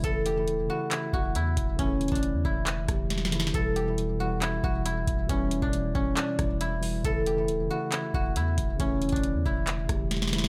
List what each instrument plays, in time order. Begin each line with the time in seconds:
Already playing: guzheng D4 E4
0.01 808-style bass E1, tine electric piano C#3 E3 A3, guzheng A4, kick, closed hi-hat
0.07 tine electric piano E4
0.26 guzheng G4, closed hi-hat
0.34 tine electric piano C#3 E3 A3
0.40 tine electric piano E4
0.48 808-style bass D1, closed hi-hat
0.58 808-style bass E1
0.67 tine electric piano C#3 E3 A3, guzheng F#4
0.73 tine electric piano E4
0.91 guzheng E4, clap, closed hi-hat
1.13 808-style bass E1, guzheng F#4, kick
1.35 808-style bass E2, guzheng E4, closed hi-hat
1.57 808-style bass E1, kick, closed hi-hat
1.76 808-style bass E1, tine electric piano C#3 E3 A3, guzheng C#4, kick, closed hi-hat
1.82 tine electric piano E4
2.01 closed hi-hat
2.08 808-style bass E1, guzheng D4, kick, closed hi-hat
2.15 closed hi-hat
2.23 closed hi-hat
2.34 808-style bass E2
2.45 808-style bass E1, guzheng E4, kick
2.67 clap, closed hi-hat
2.85 808-style bass E1, tine electric piano C#3 E3 A3, kick, cross-stick, closed hi-hat
2.91 tine electric piano G4
3.10 snare, closed hi-hat
3.18 snare
3.25 snare
3.29 tine electric piano C#3 E3 A3, snare, closed hi-hat
3.35 tine electric piano E4
3.40 snare
3.47 snare
3.51 808-style bass E1, tine electric piano B2 E3, guzheng A4, kick, closed hi-hat
3.55 tine electric piano G3 E4
3.76 guzheng G4, closed hi-hat
3.84 tine electric piano B2 E3 G3
3.90 tine electric piano E4
3.98 closed hi-hat
4.17 tine electric piano B2 E3 G3, guzheng F#4
4.23 tine electric piano E4
4.42 guzheng E4, clap, closed hi-hat
4.64 808-style bass E1, guzheng F#4, kick
4.85 guzheng E4, closed hi-hat
5.07 808-style bass E1, kick, closed hi-hat
5.26 808-style bass E1, tine electric piano B2 E3 G3, guzheng C#4, kick, closed hi-hat
5.32 tine electric piano E4
5.51 closed hi-hat
5.62 808-style bass E1, guzheng D4, kick
5.73 closed hi-hat
5.95 808-style bass E1, guzheng C#4, kick
6.17 guzheng D4, clap, closed hi-hat
6.36 808-style bass E1, tine electric piano B2 E3 G3, kick, cross-stick, closed hi-hat
6.42 tine electric piano E4
6.61 guzheng E4, closed hi-hat
6.80 tine electric piano B2 E3 G3, open hi-hat
6.86 tine electric piano E4
7.02 808-style bass E1, tine electric piano C#3 E3 A3, guzheng A4, kick, closed hi-hat
7.08 tine electric piano E4
7.26 guzheng G4, closed hi-hat
7.34 tine electric piano C#3 E3 A3
7.40 tine electric piano E4
7.48 808-style bass D1, closed hi-hat
7.59 808-style bass E1
7.67 tine electric piano C#3 E3 A3, guzheng F#4
7.73 tine electric piano E4
7.92 guzheng E4, clap, closed hi-hat
8.14 808-style bass E1, guzheng F#4, kick
8.36 808-style bass E2, guzheng E4, closed hi-hat
8.58 808-style bass E1, kick, closed hi-hat
8.77 808-style bass E1, tine electric piano C#3 E3 A3, guzheng C#4, kick, closed hi-hat
8.83 tine electric piano E4
9.02 closed hi-hat
9.09 808-style bass E1, guzheng D4, kick, closed hi-hat
9.16 closed hi-hat
9.24 closed hi-hat
9.34 808-style bass E2
9.45 808-style bass E1, guzheng E4, kick
9.67 clap, closed hi-hat
9.86 808-style bass E1, tine electric piano C#3 E3 A3, kick, cross-stick, closed hi-hat
9.92 tine electric piano G4
10.11 snare, closed hi-hat
10.17 snare
10.22 snare
10.27 tine electric piano C#3, snare
10.32 tine electric piano E3 A3 E4, snare, closed hi-hat
10.38 snare
10.44 snare